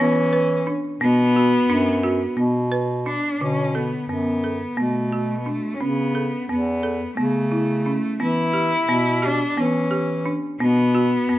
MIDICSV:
0, 0, Header, 1, 4, 480
1, 0, Start_track
1, 0, Key_signature, 2, "minor"
1, 0, Tempo, 684932
1, 711, Time_signature, 7, 3, 24, 8
1, 7981, End_track
2, 0, Start_track
2, 0, Title_t, "Marimba"
2, 0, Program_c, 0, 12
2, 0, Note_on_c, 0, 59, 75
2, 206, Note_off_c, 0, 59, 0
2, 230, Note_on_c, 0, 71, 63
2, 444, Note_off_c, 0, 71, 0
2, 469, Note_on_c, 0, 62, 58
2, 684, Note_off_c, 0, 62, 0
2, 708, Note_on_c, 0, 59, 68
2, 923, Note_off_c, 0, 59, 0
2, 954, Note_on_c, 0, 66, 60
2, 1166, Note_off_c, 0, 66, 0
2, 1189, Note_on_c, 0, 62, 70
2, 1403, Note_off_c, 0, 62, 0
2, 1425, Note_on_c, 0, 66, 62
2, 1641, Note_off_c, 0, 66, 0
2, 1660, Note_on_c, 0, 59, 69
2, 1878, Note_off_c, 0, 59, 0
2, 1904, Note_on_c, 0, 71, 62
2, 2120, Note_off_c, 0, 71, 0
2, 2146, Note_on_c, 0, 62, 58
2, 2361, Note_off_c, 0, 62, 0
2, 2392, Note_on_c, 0, 50, 58
2, 2605, Note_off_c, 0, 50, 0
2, 2627, Note_on_c, 0, 69, 55
2, 2842, Note_off_c, 0, 69, 0
2, 2868, Note_on_c, 0, 59, 58
2, 3083, Note_off_c, 0, 59, 0
2, 3110, Note_on_c, 0, 69, 52
2, 3324, Note_off_c, 0, 69, 0
2, 3345, Note_on_c, 0, 59, 65
2, 3561, Note_off_c, 0, 59, 0
2, 3591, Note_on_c, 0, 66, 54
2, 3805, Note_off_c, 0, 66, 0
2, 3828, Note_on_c, 0, 62, 54
2, 4043, Note_off_c, 0, 62, 0
2, 4069, Note_on_c, 0, 61, 64
2, 4284, Note_off_c, 0, 61, 0
2, 4309, Note_on_c, 0, 69, 52
2, 4524, Note_off_c, 0, 69, 0
2, 4550, Note_on_c, 0, 59, 61
2, 4765, Note_off_c, 0, 59, 0
2, 4788, Note_on_c, 0, 69, 59
2, 5003, Note_off_c, 0, 69, 0
2, 5027, Note_on_c, 0, 59, 67
2, 5243, Note_off_c, 0, 59, 0
2, 5267, Note_on_c, 0, 64, 55
2, 5484, Note_off_c, 0, 64, 0
2, 5509, Note_on_c, 0, 61, 55
2, 5724, Note_off_c, 0, 61, 0
2, 5746, Note_on_c, 0, 59, 65
2, 5963, Note_off_c, 0, 59, 0
2, 5982, Note_on_c, 0, 67, 55
2, 6201, Note_off_c, 0, 67, 0
2, 6227, Note_on_c, 0, 59, 64
2, 6444, Note_off_c, 0, 59, 0
2, 6463, Note_on_c, 0, 67, 57
2, 6682, Note_off_c, 0, 67, 0
2, 6710, Note_on_c, 0, 59, 69
2, 6926, Note_off_c, 0, 59, 0
2, 6944, Note_on_c, 0, 67, 61
2, 7163, Note_off_c, 0, 67, 0
2, 7187, Note_on_c, 0, 62, 59
2, 7405, Note_off_c, 0, 62, 0
2, 7431, Note_on_c, 0, 59, 72
2, 7647, Note_off_c, 0, 59, 0
2, 7671, Note_on_c, 0, 66, 59
2, 7887, Note_off_c, 0, 66, 0
2, 7912, Note_on_c, 0, 59, 64
2, 7981, Note_off_c, 0, 59, 0
2, 7981, End_track
3, 0, Start_track
3, 0, Title_t, "Cello"
3, 0, Program_c, 1, 42
3, 0, Note_on_c, 1, 61, 78
3, 467, Note_off_c, 1, 61, 0
3, 707, Note_on_c, 1, 59, 105
3, 1640, Note_off_c, 1, 59, 0
3, 2147, Note_on_c, 1, 62, 67
3, 2346, Note_off_c, 1, 62, 0
3, 2346, Note_on_c, 1, 62, 54
3, 2387, Note_on_c, 1, 61, 73
3, 2398, Note_off_c, 1, 62, 0
3, 2632, Note_on_c, 1, 59, 63
3, 2643, Note_off_c, 1, 61, 0
3, 2869, Note_off_c, 1, 59, 0
3, 2873, Note_on_c, 1, 59, 65
3, 3361, Note_on_c, 1, 57, 65
3, 3372, Note_off_c, 1, 59, 0
3, 3780, Note_off_c, 1, 57, 0
3, 3785, Note_on_c, 1, 59, 43
3, 3845, Note_on_c, 1, 57, 61
3, 3856, Note_off_c, 1, 59, 0
3, 4025, Note_on_c, 1, 61, 53
3, 4036, Note_off_c, 1, 57, 0
3, 4068, Note_on_c, 1, 59, 75
3, 4079, Note_off_c, 1, 61, 0
3, 4548, Note_off_c, 1, 59, 0
3, 4552, Note_on_c, 1, 59, 70
3, 5004, Note_off_c, 1, 59, 0
3, 5030, Note_on_c, 1, 57, 67
3, 5724, Note_off_c, 1, 57, 0
3, 5761, Note_on_c, 1, 64, 91
3, 6486, Note_on_c, 1, 62, 78
3, 6496, Note_off_c, 1, 64, 0
3, 6726, Note_on_c, 1, 61, 71
3, 6736, Note_off_c, 1, 62, 0
3, 7201, Note_off_c, 1, 61, 0
3, 7426, Note_on_c, 1, 59, 97
3, 7981, Note_off_c, 1, 59, 0
3, 7981, End_track
4, 0, Start_track
4, 0, Title_t, "Bass clarinet"
4, 0, Program_c, 2, 71
4, 0, Note_on_c, 2, 52, 85
4, 542, Note_off_c, 2, 52, 0
4, 706, Note_on_c, 2, 47, 81
4, 1075, Note_off_c, 2, 47, 0
4, 1185, Note_on_c, 2, 42, 84
4, 1554, Note_off_c, 2, 42, 0
4, 1664, Note_on_c, 2, 47, 79
4, 2217, Note_off_c, 2, 47, 0
4, 2383, Note_on_c, 2, 47, 71
4, 2753, Note_off_c, 2, 47, 0
4, 2866, Note_on_c, 2, 42, 75
4, 3235, Note_off_c, 2, 42, 0
4, 3349, Note_on_c, 2, 47, 74
4, 3901, Note_off_c, 2, 47, 0
4, 4073, Note_on_c, 2, 49, 67
4, 4440, Note_off_c, 2, 49, 0
4, 4554, Note_on_c, 2, 40, 76
4, 4921, Note_off_c, 2, 40, 0
4, 5037, Note_on_c, 2, 49, 75
4, 5587, Note_off_c, 2, 49, 0
4, 5749, Note_on_c, 2, 52, 72
4, 6119, Note_off_c, 2, 52, 0
4, 6225, Note_on_c, 2, 47, 77
4, 6597, Note_off_c, 2, 47, 0
4, 6709, Note_on_c, 2, 52, 76
4, 7264, Note_off_c, 2, 52, 0
4, 7432, Note_on_c, 2, 47, 76
4, 7802, Note_off_c, 2, 47, 0
4, 7910, Note_on_c, 2, 42, 77
4, 7981, Note_off_c, 2, 42, 0
4, 7981, End_track
0, 0, End_of_file